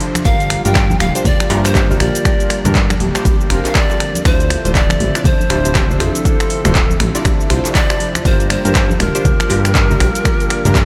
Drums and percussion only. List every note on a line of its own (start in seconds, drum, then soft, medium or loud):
0.00 open hi-hat medium
0.15 finger snap medium
0.15 closed hi-hat soft
0.15 high conga medium
0.15 cabasa medium
0.25 kick loud
0.25 closed hi-hat medium
0.25 cabasa medium
0.40 closed hi-hat soft
0.40 cabasa soft
0.50 finger snap loud
0.50 open hi-hat medium
0.65 closed hi-hat soft
0.65 mid tom medium
0.65 djembe tone medium
0.65 cabasa medium
0.75 finger snap loud
0.75 kick loud
0.75 clap loud
0.75 closed hi-hat medium
0.75 cabasa medium
0.90 high conga loud
0.90 cabasa soft
1.00 finger snap medium
1.00 mid tom loud
1.00 open hi-hat medium
1.00 djembe tone medium
1.15 closed hi-hat soft
1.15 cabasa medium
1.25 kick loud
1.25 closed hi-hat medium
1.25 low conga loud
1.25 cabasa medium
1.40 finger snap loud
1.40 high conga medium
1.40 cabasa soft
1.50 open hi-hat medium
1.50 djembe slap loud
1.50 djembe tone medium
1.64 finger snap medium
1.64 closed hi-hat soft
1.64 djembe slap medium
1.64 cabasa medium
1.74 kick loud
1.74 clap loud
1.74 closed hi-hat medium
1.74 djembe tone loud
1.74 cabasa medium
1.90 djembe tone medium
1.90 low conga medium
1.90 cabasa soft
2.00 finger snap medium
2.00 open hi-hat medium
2.00 djembe bass medium
2.15 closed hi-hat soft
2.15 cabasa medium
2.25 finger snap medium
2.25 kick loud
2.25 closed hi-hat medium
2.25 cabasa medium
2.40 closed hi-hat soft
2.40 cabasa soft
2.50 finger snap medium
2.50 open hi-hat medium
2.64 closed hi-hat soft
2.64 mid tom medium
2.64 djembe slap medium
2.64 djembe tone medium
2.64 high conga medium
2.64 low conga medium
2.64 cabasa medium
2.75 kick loud
2.75 clap loud
2.75 closed hi-hat medium
2.75 cabasa medium
2.90 finger snap medium
2.90 high conga loud
2.90 cabasa soft
3.00 mid tom loud
3.00 open hi-hat medium
3.00 djembe tone medium
3.15 finger snap medium
3.15 closed hi-hat soft
3.15 djembe slap medium
3.15 cabasa medium
3.25 kick loud
3.25 closed hi-hat medium
3.25 djembe tone medium
3.25 high conga medium
3.25 djembe bass medium
3.25 cabasa medium
3.41 cabasa soft
3.50 finger snap medium
3.50 open hi-hat medium
3.50 djembe bass medium
3.64 clap soft
3.64 closed hi-hat soft
3.64 djembe tone medium
3.64 cabasa medium
3.75 finger snap medium
3.75 kick loud
3.75 clap loud
3.75 closed hi-hat medium
3.75 cabasa medium
3.90 djembe slap medium
3.90 cabasa soft
4.00 finger snap medium
4.00 open hi-hat medium
4.15 closed hi-hat soft
4.15 high conga medium
4.15 cabasa medium
4.25 finger snap medium
4.25 kick loud
4.25 closed hi-hat medium
4.25 cabasa medium
4.40 closed hi-hat soft
4.40 cabasa soft
4.50 finger snap medium
4.50 open hi-hat medium
4.65 closed hi-hat soft
4.65 mid tom medium
4.65 djembe tone medium
4.65 cabasa medium
4.75 kick loud
4.75 clap loud
4.75 closed hi-hat medium
4.75 cabasa medium
4.89 finger snap medium
4.89 high conga medium
4.89 cabasa soft
5.00 mid tom loud
5.00 open hi-hat medium
5.00 djembe tone medium
5.15 finger snap medium
5.15 closed hi-hat soft
5.15 cabasa medium
5.24 kick loud
5.24 closed hi-hat medium
5.24 low conga loud
5.24 cabasa medium
5.41 high conga medium
5.41 cabasa soft
5.50 finger snap medium
5.50 open hi-hat medium
5.50 djembe slap medium
5.50 djembe tone medium
5.65 closed hi-hat soft
5.65 djembe slap medium
5.65 cabasa medium
5.75 finger snap medium
5.75 kick loud
5.75 clap loud
5.75 closed hi-hat medium
5.75 djembe tone loud
5.75 cabasa medium
5.89 djembe tone medium
5.89 low conga medium
5.89 cabasa soft
6.00 finger snap medium
6.00 open hi-hat medium
6.00 djembe bass medium
6.15 closed hi-hat soft
6.15 cabasa medium
6.25 kick loud
6.25 closed hi-hat medium
6.25 cabasa medium
6.40 finger snap medium
6.40 closed hi-hat soft
6.40 cabasa soft
6.50 open hi-hat medium
6.65 finger snap medium
6.65 closed hi-hat soft
6.65 mid tom medium
6.65 djembe slap medium
6.65 djembe tone medium
6.65 high conga medium
6.65 low conga medium
6.65 cabasa medium
6.75 kick loud
6.75 clap loud
6.75 closed hi-hat medium
6.75 cabasa medium
6.90 high conga medium
6.90 cabasa soft
7.00 finger snap loud
7.00 mid tom loud
7.00 open hi-hat medium
7.00 djembe tone medium
7.15 closed hi-hat soft
7.15 djembe slap medium
7.15 cabasa medium
7.24 finger snap medium
7.24 kick loud
7.24 closed hi-hat medium
7.24 djembe tone medium
7.24 high conga medium
7.24 djembe bass loud
7.24 cabasa medium
7.41 cabasa soft
7.50 finger snap medium
7.50 open hi-hat medium
7.50 djembe bass medium
7.65 clap soft
7.65 closed hi-hat soft
7.65 djembe tone medium
7.65 cabasa medium
7.75 kick loud
7.75 clap loud
7.75 closed hi-hat medium
7.75 cabasa medium
7.90 finger snap medium
7.90 djembe slap medium
7.90 cabasa soft
8.00 open hi-hat medium
8.15 finger snap medium
8.15 closed hi-hat soft
8.15 high conga medium
8.15 cabasa medium
8.25 kick loud
8.25 closed hi-hat medium
8.25 cabasa medium
8.40 closed hi-hat soft
8.40 cabasa soft
8.50 finger snap loud
8.50 open hi-hat loud
8.65 closed hi-hat soft
8.65 mid tom medium
8.65 djembe tone medium
8.65 cabasa medium
8.75 finger snap medium
8.75 kick loud
8.75 clap loud
8.75 closed hi-hat medium
8.75 cabasa medium
8.90 high conga medium
8.90 cabasa soft
9.00 finger snap medium
9.00 mid tom loud
9.00 open hi-hat medium
9.00 djembe tone medium
9.15 closed hi-hat soft
9.15 cabasa medium
9.25 kick loud
9.25 closed hi-hat medium
9.25 low conga medium
9.25 cabasa medium
9.40 finger snap medium
9.40 high conga medium
9.40 cabasa soft
9.50 open hi-hat medium
9.50 djembe slap loud
9.50 djembe tone medium
9.65 finger snap medium
9.65 closed hi-hat soft
9.65 djembe slap medium
9.65 cabasa medium
9.75 kick loud
9.75 clap loud
9.75 closed hi-hat medium
9.75 djembe tone medium
9.75 cabasa medium
9.90 djembe tone medium
9.90 low conga medium
9.90 cabasa soft
10.00 finger snap medium
10.00 open hi-hat medium
10.00 djembe bass loud
10.15 closed hi-hat soft
10.15 cabasa medium
10.25 finger snap loud
10.25 kick loud
10.25 closed hi-hat medium
10.25 cabasa medium
10.40 closed hi-hat soft
10.40 cabasa soft
10.50 finger snap medium
10.50 open hi-hat loud
10.65 closed hi-hat soft
10.65 mid tom medium
10.65 djembe slap medium
10.65 high conga medium
10.65 djembe tone medium
10.65 low conga loud
10.65 cabasa medium
10.75 kick loud
10.75 clap loud
10.75 closed hi-hat medium
10.75 cabasa medium